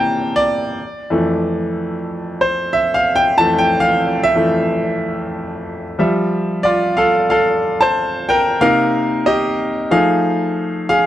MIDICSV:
0, 0, Header, 1, 2, 480
1, 0, Start_track
1, 0, Key_signature, -1, "major"
1, 0, Tempo, 651466
1, 572, Time_signature, 4, 2, 24, 8
1, 8152, End_track
2, 0, Start_track
2, 0, Title_t, "Grand piano"
2, 0, Program_c, 0, 0
2, 0, Control_c, 0, 64, 127
2, 0, Note_on_c, 0, 48, 53
2, 0, Note_on_c, 0, 52, 51
2, 0, Note_on_c, 0, 58, 59
2, 0, Note_on_c, 0, 79, 95
2, 0, Note_on_c, 0, 81, 97
2, 0, Note_on_c, 0, 82, 98
2, 236, Note_off_c, 0, 79, 0
2, 265, Note_on_c, 0, 74, 95
2, 538, Note_off_c, 0, 48, 0
2, 542, Note_off_c, 0, 52, 0
2, 544, Note_off_c, 0, 58, 0
2, 582, Control_c, 0, 64, 0
2, 583, Note_off_c, 0, 82, 0
2, 587, Note_off_c, 0, 81, 0
2, 700, Control_c, 0, 64, 127
2, 813, Note_on_c, 0, 41, 54
2, 820, Note_on_c, 0, 52, 52
2, 824, Note_on_c, 0, 57, 57
2, 1140, Note_off_c, 0, 41, 0
2, 1143, Note_off_c, 0, 52, 0
2, 1145, Note_off_c, 0, 57, 0
2, 1430, Note_off_c, 0, 74, 0
2, 1776, Note_on_c, 0, 72, 82
2, 2011, Note_on_c, 0, 76, 90
2, 2022, Note_off_c, 0, 72, 0
2, 2168, Note_on_c, 0, 77, 90
2, 2177, Note_off_c, 0, 76, 0
2, 2325, Note_on_c, 0, 79, 99
2, 2336, Note_off_c, 0, 77, 0
2, 2488, Note_on_c, 0, 81, 113
2, 2494, Note_off_c, 0, 79, 0
2, 2495, Note_on_c, 0, 41, 60
2, 2496, Note_on_c, 0, 52, 53
2, 2505, Note_on_c, 0, 57, 66
2, 2525, Note_off_c, 0, 81, 0
2, 2641, Note_on_c, 0, 79, 100
2, 2801, Note_on_c, 0, 77, 94
2, 2812, Note_off_c, 0, 79, 0
2, 3120, Note_on_c, 0, 76, 102
2, 3137, Note_off_c, 0, 77, 0
2, 3185, Note_off_c, 0, 41, 0
2, 3185, Note_off_c, 0, 52, 0
2, 3190, Note_off_c, 0, 57, 0
2, 3210, Note_on_c, 0, 41, 50
2, 3212, Note_on_c, 0, 52, 45
2, 3216, Note_on_c, 0, 57, 58
2, 3428, Note_off_c, 0, 41, 0
2, 3429, Note_off_c, 0, 52, 0
2, 3431, Note_off_c, 0, 57, 0
2, 4298, Note_off_c, 0, 76, 0
2, 4412, Note_on_c, 0, 53, 60
2, 4415, Note_on_c, 0, 55, 58
2, 4418, Note_on_c, 0, 76, 63
2, 4423, Control_c, 0, 64, 0
2, 4568, Control_c, 0, 64, 127
2, 4887, Note_on_c, 0, 74, 89
2, 4900, Note_on_c, 0, 65, 70
2, 5113, Note_off_c, 0, 74, 0
2, 5121, Note_off_c, 0, 65, 0
2, 5134, Note_on_c, 0, 77, 87
2, 5142, Note_on_c, 0, 69, 72
2, 5188, Note_off_c, 0, 77, 0
2, 5195, Note_off_c, 0, 69, 0
2, 5378, Note_on_c, 0, 77, 89
2, 5387, Note_on_c, 0, 69, 77
2, 5725, Note_off_c, 0, 69, 0
2, 5751, Note_on_c, 0, 81, 99
2, 5757, Note_off_c, 0, 77, 0
2, 5762, Note_on_c, 0, 72, 81
2, 6079, Note_off_c, 0, 72, 0
2, 6106, Note_on_c, 0, 79, 99
2, 6108, Note_off_c, 0, 81, 0
2, 6114, Note_on_c, 0, 70, 85
2, 6304, Note_off_c, 0, 53, 0
2, 6305, Note_off_c, 0, 55, 0
2, 6307, Note_off_c, 0, 76, 0
2, 6328, Note_off_c, 0, 70, 0
2, 6343, Control_c, 0, 64, 0
2, 6343, Note_on_c, 0, 48, 63
2, 6344, Note_on_c, 0, 58, 54
2, 6344, Note_on_c, 0, 77, 108
2, 6347, Note_off_c, 0, 79, 0
2, 6351, Note_on_c, 0, 63, 67
2, 6351, Note_on_c, 0, 70, 83
2, 6483, Control_c, 0, 64, 127
2, 6665, Note_off_c, 0, 48, 0
2, 6666, Note_off_c, 0, 58, 0
2, 6670, Note_off_c, 0, 63, 0
2, 6793, Note_off_c, 0, 70, 0
2, 6824, Note_on_c, 0, 75, 91
2, 6833, Note_on_c, 0, 67, 72
2, 6834, Note_off_c, 0, 77, 0
2, 7274, Note_off_c, 0, 67, 0
2, 7301, Note_on_c, 0, 53, 60
2, 7303, Note_on_c, 0, 57, 55
2, 7305, Control_c, 0, 64, 0
2, 7305, Note_on_c, 0, 77, 94
2, 7310, Note_on_c, 0, 63, 63
2, 7310, Note_on_c, 0, 68, 72
2, 7314, Note_off_c, 0, 75, 0
2, 7443, Control_c, 0, 64, 127
2, 7991, Note_off_c, 0, 77, 0
2, 7993, Note_off_c, 0, 68, 0
2, 8025, Note_on_c, 0, 77, 97
2, 8030, Note_on_c, 0, 68, 76
2, 8152, Note_off_c, 0, 53, 0
2, 8152, Note_off_c, 0, 57, 0
2, 8152, Note_off_c, 0, 63, 0
2, 8152, Note_off_c, 0, 68, 0
2, 8152, Note_off_c, 0, 77, 0
2, 8152, End_track
0, 0, End_of_file